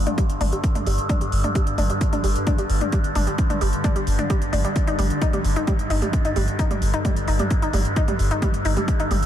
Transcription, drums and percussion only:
0.07 closed hi-hat medium
0.07 mid tom medium
0.18 kick loud
0.18 closed hi-hat medium
0.30 closed hi-hat medium
0.41 mid tom medium
0.41 open hi-hat loud
0.52 closed hi-hat medium
0.64 kick loud
0.64 closed hi-hat medium
0.75 closed hi-hat medium
0.75 mid tom medium
0.87 open hi-hat loud
0.98 closed hi-hat medium
1.09 kick loud
1.09 closed hi-hat medium
1.09 mid tom medium
1.21 closed hi-hat medium
1.32 open hi-hat loud
1.44 closed hi-hat medium
1.44 mid tom medium
1.55 kick loud
1.55 closed hi-hat medium
1.67 closed hi-hat medium
1.78 mid tom medium
1.78 open hi-hat medium
1.90 closed hi-hat medium
2.01 kick loud
2.01 closed hi-hat medium
2.13 closed hi-hat medium
2.13 mid tom medium
2.24 open hi-hat loud
2.36 closed hi-hat medium
2.47 kick loud
2.47 closed hi-hat medium
2.47 mid tom medium
2.58 closed hi-hat medium
2.70 open hi-hat loud
2.81 closed hi-hat medium
2.81 mid tom medium
2.92 kick loud
2.92 closed hi-hat medium
3.04 closed hi-hat medium
3.15 mid tom medium
3.15 open hi-hat loud
3.27 closed hi-hat medium
3.38 kick loud
3.38 closed hi-hat medium
3.50 closed hi-hat medium
3.50 mid tom medium
3.61 open hi-hat medium
3.73 closed hi-hat medium
3.84 kick loud
3.84 closed hi-hat medium
3.84 mid tom medium
3.96 closed hi-hat medium
4.07 open hi-hat loud
4.19 closed hi-hat medium
4.19 mid tom medium
4.30 kick loud
4.30 closed hi-hat medium
4.42 closed hi-hat medium
4.53 mid tom medium
4.53 open hi-hat loud
4.65 closed hi-hat medium
4.76 kick loud
4.76 closed hi-hat medium
4.87 closed hi-hat soft
4.99 mid tom medium
4.99 open hi-hat loud
5.10 closed hi-hat medium
5.22 kick loud
5.22 closed hi-hat medium
5.33 closed hi-hat soft
5.33 mid tom medium
5.44 open hi-hat medium
5.56 closed hi-hat soft
5.67 kick loud
5.67 closed hi-hat medium
5.67 mid tom medium
5.79 closed hi-hat medium
5.90 open hi-hat loud
6.02 closed hi-hat medium
6.02 mid tom medium
6.13 kick loud
6.13 closed hi-hat medium
6.25 closed hi-hat soft
6.36 mid tom medium
6.36 open hi-hat medium
6.48 closed hi-hat soft
6.59 kick loud
6.59 closed hi-hat medium
6.71 closed hi-hat soft
6.71 mid tom medium
6.82 open hi-hat loud
6.94 closed hi-hat medium
7.05 kick loud
7.05 closed hi-hat medium
7.05 mid tom medium
7.16 closed hi-hat medium
7.28 open hi-hat medium
7.39 closed hi-hat medium
7.39 mid tom medium
7.50 kick loud
7.50 closed hi-hat medium
7.62 closed hi-hat medium
7.73 mid tom medium
7.73 open hi-hat loud
7.85 closed hi-hat medium
7.96 kick loud
7.96 closed hi-hat medium
8.08 closed hi-hat medium
8.08 mid tom medium
8.19 open hi-hat medium
8.31 closed hi-hat soft
8.42 kick loud
8.42 closed hi-hat medium
8.42 mid tom medium
8.54 closed hi-hat soft
8.65 open hi-hat loud
8.77 closed hi-hat soft
8.77 mid tom medium
8.88 kick loud
8.88 closed hi-hat medium
9.00 closed hi-hat medium
9.11 mid tom medium
9.11 open hi-hat medium
9.23 closed hi-hat medium

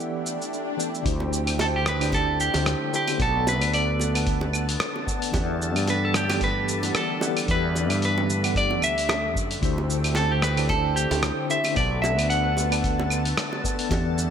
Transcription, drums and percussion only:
0.00 shaker soft
0.26 shaker medium
0.42 shaker soft
0.53 shaker soft
0.80 shaker medium
0.95 shaker soft
1.05 kick loud
1.05 open hi-hat soft
1.05 shaker soft
1.20 high bongo soft
1.33 shaker medium
1.47 open hi-hat medium
1.47 claves medium
1.47 shaker soft
1.59 open hi-hat soft
1.59 high bongo medium
1.59 shaker soft
1.86 cross-stick medium
1.86 shaker medium
2.01 open hi-hat medium
2.01 claves medium
2.01 shaker soft
2.12 kick loud
2.12 open hi-hat soft
2.12 high bongo medium
2.12 shaker soft
2.40 shaker medium
2.54 open hi-hat medium
2.54 high bongo medium
2.54 shaker soft
2.66 cross-stick medium
2.66 open hi-hat soft
2.66 shaker soft
2.94 shaker medium
3.08 open hi-hat medium
3.08 high bongo medium
3.08 claves medium
3.08 shaker soft
3.20 kick loud
3.20 open hi-hat soft
3.20 shaker soft
3.47 high bongo medium
3.47 shaker medium
3.62 open hi-hat medium
3.62 claves medium
3.62 shaker soft
3.73 open hi-hat soft
3.73 shaker soft
4.00 high bongo medium
4.00 shaker medium
4.15 open hi-hat medium
4.15 claves medium
4.15 shaker soft
4.27 kick loud
4.27 open hi-hat soft
4.27 shaker soft
4.41 high bongo medium
4.53 claves medium
4.53 shaker medium
4.69 open hi-hat medium
4.69 shaker soft
4.80 cross-stick medium
4.80 open hi-hat soft
4.80 shaker soft
4.96 high bongo soft
5.07 kick loud
5.07 shaker medium
5.22 open hi-hat medium
5.22 shaker soft
5.34 kick loud
5.34 open hi-hat soft
5.34 high bongo medium
5.34 shaker soft
5.62 shaker medium
5.76 open hi-hat medium
5.76 claves medium
5.76 shaker soft
5.87 open hi-hat soft
5.87 high bongo medium
5.87 shaker soft
6.14 cross-stick medium
6.14 shaker medium
6.30 open hi-hat medium
6.30 high bongo medium
6.30 claves medium
6.30 shaker soft
6.41 kick loud
6.41 open hi-hat soft
6.41 shaker soft
6.68 shaker medium
6.83 open hi-hat medium
6.83 high bongo medium
6.83 shaker soft
6.95 cross-stick medium
6.95 open hi-hat soft
6.95 shaker soft
7.21 high bongo medium
7.21 shaker medium
7.37 open hi-hat medium
7.37 claves medium
7.37 shaker soft
7.48 kick loud
7.48 open hi-hat soft
7.48 shaker soft
7.75 high bongo soft
7.75 shaker medium
7.90 open hi-hat soft
7.90 claves medium
7.90 shaker soft
8.02 open hi-hat soft
8.02 shaker soft
8.18 high bongo medium
8.30 shaker medium
8.44 open hi-hat medium
8.44 claves medium
8.44 shaker soft
8.55 kick loud
8.55 open hi-hat soft
8.55 shaker soft
8.71 high bongo soft
8.82 claves medium
8.82 shaker medium
8.98 open hi-hat medium
8.98 shaker soft
9.09 cross-stick medium
9.09 open hi-hat soft
9.09 high bongo medium
9.09 shaker soft
9.35 kick loud
9.35 shaker medium
9.51 open hi-hat medium
9.51 shaker soft
9.62 kick loud
9.62 open hi-hat soft
9.62 shaker soft
9.78 high bongo medium
9.90 shaker medium
10.04 open hi-hat medium
10.04 claves medium
10.04 shaker soft
10.15 open hi-hat soft
10.15 high bongo medium
10.15 shaker soft
10.42 cross-stick medium
10.42 shaker medium
10.57 open hi-hat medium
10.57 claves medium
10.57 shaker soft
10.69 kick loud
10.69 open hi-hat soft
10.69 high bongo soft
10.69 shaker soft
10.97 shaker medium
11.11 open hi-hat medium
11.11 high bongo medium
11.11 shaker soft
11.23 cross-stick medium
11.23 open hi-hat soft
11.23 shaker soft
11.50 shaker medium
11.64 open hi-hat medium
11.64 high bongo medium
11.64 claves medium
11.64 shaker soft
11.76 kick loud
11.76 open hi-hat soft
11.76 shaker soft
12.04 high bongo medium
12.04 shaker medium
12.19 open hi-hat medium
12.19 claves medium
12.19 shaker soft
12.30 open hi-hat soft
12.30 shaker soft
12.57 high bongo medium
12.57 shaker medium
12.72 open hi-hat medium
12.72 claves medium
12.72 shaker soft
12.84 kick loud
12.84 open hi-hat soft
12.84 shaker soft
13.00 high bongo medium
13.10 claves medium
13.10 shaker medium
13.25 open hi-hat medium
13.25 shaker soft
13.37 cross-stick medium
13.37 open hi-hat soft
13.37 shaker soft
13.53 high bongo medium
13.64 kick loud
13.64 shaker medium
13.79 open hi-hat medium
13.79 shaker soft
13.91 kick loud
13.91 open hi-hat soft
13.91 high bongo medium
13.91 shaker soft
14.18 shaker medium

